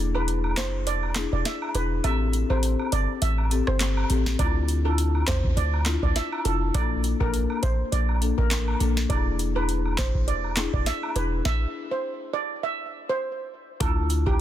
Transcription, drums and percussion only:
0.15 high woodblock medium
0.28 closed hi-hat medium
0.44 high woodblock medium
0.57 snare loud
0.57 clap medium
0.57 closed hi-hat medium
0.57 cabasa medium
0.87 closed hi-hat medium
1.03 high woodblock medium
1.16 snare loud
1.16 clap medium
1.16 closed hi-hat medium
1.16 cabasa medium
1.45 snare medium
1.45 closed hi-hat medium
1.62 high woodblock medium
1.75 closed hi-hat medium
1.75 cabasa medium
2.04 closed hi-hat medium
2.04 high woodblock medium
2.33 closed hi-hat medium
2.33 cabasa medium
2.50 high woodblock medium
2.63 closed hi-hat medium
2.79 high woodblock medium
2.92 closed hi-hat medium
2.92 cabasa medium
3.22 closed hi-hat medium
3.38 high woodblock medium
3.51 closed hi-hat medium
3.51 cabasa medium
3.67 cross-stick loud
3.80 snare loud
3.80 clap medium
3.80 closed hi-hat medium
3.97 high woodblock medium
4.10 closed hi-hat medium
4.10 cabasa medium
4.26 snare medium
4.39 kick loud
4.39 closed hi-hat medium
4.39 high woodblock medium
4.68 closed hi-hat medium
4.68 cabasa medium
4.85 high woodblock medium
4.98 closed hi-hat medium
5.15 high woodblock medium
5.27 kick medium
5.27 snare loud
5.27 clap medium
5.27 closed hi-hat medium
5.27 cabasa medium
5.44 kick loud
5.57 closed hi-hat medium
5.74 high woodblock medium
5.86 snare loud
5.86 clap medium
5.86 closed hi-hat medium
5.86 cabasa medium
6.03 kick medium
6.16 snare medium
6.16 closed hi-hat medium
6.32 high woodblock medium
6.45 closed hi-hat medium
6.45 cabasa medium
6.74 kick loud
6.74 closed hi-hat medium
6.74 high woodblock medium
7.04 closed hi-hat medium
7.04 cabasa medium
7.21 kick medium
7.21 high woodblock medium
7.34 closed hi-hat medium
7.50 high woodblock medium
7.63 kick medium
7.63 closed hi-hat medium
7.63 cabasa medium
7.92 closed hi-hat medium
8.09 high woodblock medium
8.22 closed hi-hat medium
8.22 cabasa medium
8.38 kick medium
8.51 snare loud
8.51 clap medium
8.51 closed hi-hat medium
8.68 high woodblock medium
8.80 closed hi-hat medium
8.80 cabasa medium
8.97 snare medium
9.10 kick loud
9.10 closed hi-hat medium
9.10 high woodblock medium
9.39 closed hi-hat medium
9.39 cabasa medium
9.56 high woodblock medium
9.69 closed hi-hat medium
9.86 high woodblock medium
9.98 kick loud
9.98 snare loud
9.98 clap medium
9.98 closed hi-hat medium
9.98 cabasa medium
10.15 kick loud
10.28 closed hi-hat medium
10.44 high woodblock medium
10.57 snare loud
10.57 clap medium
10.57 closed hi-hat medium
10.57 cabasa medium
10.73 kick medium
10.86 snare medium
10.86 closed hi-hat medium
11.03 high woodblock medium
11.16 closed hi-hat medium
11.16 cabasa medium
11.45 kick loud
11.45 snare medium
13.81 kick loud
13.81 closed hi-hat medium
13.81 high woodblock medium
14.10 closed hi-hat medium
14.10 cabasa medium
14.27 kick medium
14.27 high woodblock medium

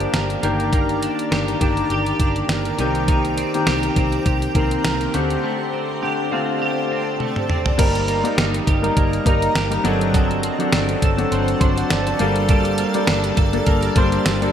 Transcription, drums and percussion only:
0.00 closed hi-hat medium
0.14 snare loud
0.14 closed hi-hat medium
0.30 closed hi-hat soft
0.43 closed hi-hat medium
0.60 closed hi-hat soft
0.73 kick loud
0.73 closed hi-hat medium
0.89 closed hi-hat soft
1.02 closed hi-hat medium
1.19 closed hi-hat medium
1.32 snare medium
1.32 closed hi-hat medium
1.48 closed hi-hat soft
1.61 kick medium
1.61 closed hi-hat medium
1.77 closed hi-hat soft
1.90 closed hi-hat medium
2.06 closed hi-hat soft
2.20 kick medium
2.20 closed hi-hat medium
2.36 closed hi-hat soft
2.49 snare loud
2.49 closed hi-hat medium
2.65 closed hi-hat medium
2.79 closed hi-hat medium
2.95 closed hi-hat soft
3.08 kick loud
3.08 closed hi-hat medium
3.25 closed hi-hat soft
3.38 closed hi-hat medium
3.54 closed hi-hat medium
3.67 snare medium
3.67 closed hi-hat medium
3.83 closed hi-hat medium
3.96 kick medium
3.96 closed hi-hat medium
4.12 closed hi-hat soft
4.26 kick medium
4.26 closed hi-hat medium
4.42 closed hi-hat soft
4.55 kick medium
4.55 closed hi-hat medium
4.71 closed hi-hat soft
4.84 snare loud
4.84 closed hi-hat medium
5.01 closed hi-hat medium
5.14 closed hi-hat medium
5.30 closed hi-hat soft
7.20 high tom medium
7.36 mid tom medium
7.50 mid tom medium
7.66 floor tom medium
7.79 kick loud
7.79 closed hi-hat medium
7.79 crash medium
7.95 closed hi-hat soft
8.08 closed hi-hat medium
8.25 closed hi-hat medium
8.38 snare loud
8.38 closed hi-hat medium
8.54 closed hi-hat medium
8.67 kick medium
8.67 closed hi-hat medium
8.84 closed hi-hat soft
8.97 kick medium
8.97 closed hi-hat medium
9.13 closed hi-hat soft
9.26 kick medium
9.26 closed hi-hat medium
9.42 closed hi-hat medium
9.55 snare loud
9.55 closed hi-hat medium
9.72 closed hi-hat medium
9.85 closed hi-hat medium
10.01 closed hi-hat soft
10.14 kick loud
10.14 closed hi-hat medium
10.31 closed hi-hat soft
10.43 closed hi-hat medium
10.60 closed hi-hat medium
10.72 snare loud
10.72 closed hi-hat medium
10.89 closed hi-hat medium
11.02 kick medium
11.02 closed hi-hat medium
11.18 closed hi-hat soft
11.32 closed hi-hat medium
11.48 closed hi-hat soft
11.61 kick medium
11.61 closed hi-hat medium
11.78 closed hi-hat medium
11.90 snare loud
11.90 closed hi-hat medium
12.07 closed hi-hat medium
12.19 closed hi-hat medium
12.36 closed hi-hat soft
12.49 kick loud
12.49 closed hi-hat medium
12.65 closed hi-hat medium
12.78 closed hi-hat medium
12.94 closed hi-hat medium
13.07 snare loud
13.07 closed hi-hat medium
13.24 closed hi-hat medium
13.37 kick medium
13.37 closed hi-hat medium
13.53 closed hi-hat soft
13.66 kick medium
13.66 closed hi-hat medium
13.83 closed hi-hat soft
13.96 kick medium
13.96 closed hi-hat medium
14.12 closed hi-hat medium
14.26 snare loud
14.26 closed hi-hat medium
14.42 closed hi-hat medium

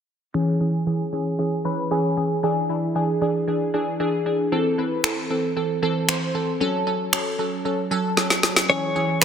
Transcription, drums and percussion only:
5.04 finger snap loud
6.09 finger snap loud
7.13 finger snap loud
8.17 snare medium
8.30 snare medium
8.43 snare medium
8.56 snare medium
9.22 finger snap loud

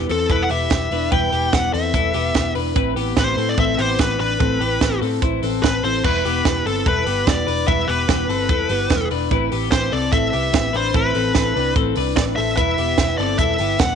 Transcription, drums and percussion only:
0.10 open hi-hat medium
0.30 kick medium
0.30 closed hi-hat medium
0.50 open hi-hat medium
0.70 kick loud
0.70 snare loud
0.70 closed hi-hat medium
0.91 open hi-hat medium
1.12 kick loud
1.12 closed hi-hat medium
1.33 open hi-hat medium
1.53 kick loud
1.53 snare loud
1.53 closed hi-hat medium
1.74 open hi-hat medium
1.94 kick loud
1.94 closed hi-hat medium
2.14 open hi-hat medium
2.34 kick loud
2.34 snare loud
2.34 closed hi-hat medium
2.55 open hi-hat medium
2.76 kick loud
2.76 closed hi-hat medium
2.97 open hi-hat medium
3.17 kick loud
3.17 snare loud
3.17 closed hi-hat medium
3.38 open hi-hat medium
3.58 kick loud
3.58 closed hi-hat medium
3.78 open hi-hat medium
3.99 kick loud
3.99 snare loud
3.99 closed hi-hat medium
4.20 open hi-hat medium
4.40 kick loud
4.40 closed hi-hat medium
4.61 open hi-hat medium
4.81 kick loud
4.81 snare loud
4.81 closed hi-hat medium
5.03 open hi-hat medium
5.22 kick loud
5.22 closed hi-hat medium
5.43 open hi-hat medium
5.64 kick medium
5.64 snare loud
5.64 closed hi-hat medium
5.84 open hi-hat medium
6.04 kick loud
6.04 crash medium
6.25 open hi-hat medium
6.45 kick loud
6.45 snare loud
6.45 closed hi-hat medium
6.66 open hi-hat medium
6.86 kick loud
6.86 closed hi-hat medium
7.06 open hi-hat medium
7.27 kick loud
7.27 snare loud
7.27 closed hi-hat medium
7.48 open hi-hat medium
7.68 kick loud
7.68 closed hi-hat medium
7.89 open hi-hat medium
8.09 kick loud
8.09 snare loud
8.09 closed hi-hat medium
8.30 open hi-hat medium
8.49 kick loud
8.49 closed hi-hat medium
8.69 open hi-hat medium
8.90 kick loud
8.90 snare loud
8.90 closed hi-hat medium
9.11 open hi-hat medium
9.31 kick loud
9.31 closed hi-hat medium
9.52 open hi-hat medium
9.72 kick loud
9.72 snare loud
9.72 closed hi-hat medium
9.93 open hi-hat medium
10.13 kick loud
10.13 closed hi-hat medium
10.33 open hi-hat medium
10.53 kick loud
10.53 snare loud
10.53 closed hi-hat medium
10.74 open hi-hat medium
10.94 kick loud
10.94 closed hi-hat medium
11.15 open hi-hat medium
11.35 kick loud
11.35 snare medium
11.35 closed hi-hat medium
11.57 open hi-hat medium
11.76 kick loud
11.76 closed hi-hat medium
11.96 open hi-hat medium
12.16 kick loud
12.16 snare loud
12.16 closed hi-hat medium
12.37 open hi-hat medium
12.57 kick medium
12.57 closed hi-hat medium
12.78 open hi-hat medium
12.98 kick loud
12.98 snare loud
12.98 closed hi-hat medium
13.19 open hi-hat medium
13.39 kick medium
13.39 closed hi-hat medium
13.58 open hi-hat medium
13.79 kick loud
13.79 snare loud
13.79 closed hi-hat medium

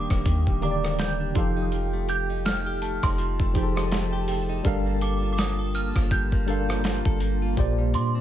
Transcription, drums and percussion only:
0.10 kick loud
0.10 cross-stick medium
0.26 kick loud
0.26 closed hi-hat medium
0.47 kick medium
0.62 closed hi-hat medium
0.85 cross-stick medium
0.99 snare loud
0.99 closed hi-hat medium
1.35 kick loud
1.35 closed hi-hat medium
1.72 closed hi-hat medium
2.09 closed hi-hat medium
2.45 snare loud
2.45 closed hi-hat medium
2.82 closed hi-hat medium
3.03 kick loud
3.03 cross-stick medium
3.18 closed hi-hat medium
3.40 kick medium
3.55 kick medium
3.55 closed hi-hat medium
3.77 cross-stick loud
3.91 snare loud
3.91 closed hi-hat medium
4.28 open hi-hat medium
4.65 kick loud
4.65 closed hi-hat medium
5.01 closed hi-hat medium
5.38 snare loud
5.38 closed hi-hat medium
5.75 closed hi-hat medium
5.96 kick loud
5.96 cross-stick medium
6.11 kick medium
6.11 closed hi-hat medium
6.32 kick medium
6.48 closed hi-hat medium
6.70 cross-stick loud
6.84 snare loud
6.84 closed hi-hat medium
7.05 kick loud
7.20 closed hi-hat medium
7.57 kick loud
7.57 closed hi-hat medium
7.94 closed hi-hat medium

